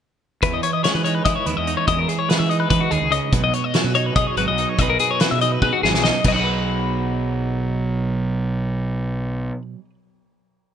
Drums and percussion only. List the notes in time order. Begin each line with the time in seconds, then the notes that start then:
0.43 kick, closed hi-hat
0.63 closed hi-hat
0.84 snare, closed hi-hat
1.05 closed hi-hat
1.25 kick, closed hi-hat
1.46 closed hi-hat
1.67 closed hi-hat
1.87 kick, closed hi-hat
2.09 closed hi-hat
2.30 snare, closed hi-hat
2.51 closed hi-hat
2.70 kick, closed hi-hat
2.91 closed hi-hat
3.12 closed hi-hat
3.32 kick, closed hi-hat
3.53 closed hi-hat
3.74 snare, closed hi-hat
3.95 closed hi-hat
4.16 kick, closed hi-hat
4.37 closed hi-hat
4.58 closed hi-hat
4.78 kick, closed hi-hat
4.99 closed hi-hat
5.20 snare, closed hi-hat
5.41 closed hi-hat
5.62 kick
5.84 snare
5.94 snare
6.04 snare
6.24 kick, crash